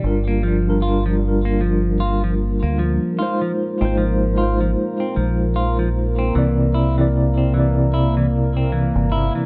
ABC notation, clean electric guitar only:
X:1
M:4/4
L:1/16
Q:"Swing 16ths" 1/4=76
K:Gphr
V:1 name="Clean electric guitar" clef=bass
z B, F,2 F F, z B, F,2 F F, z B, F,2 | F F, z C F,2 F F, z C F,2 F F, z C | =E,2 =E E, z C E,2 E E, z C E,2 E E, |]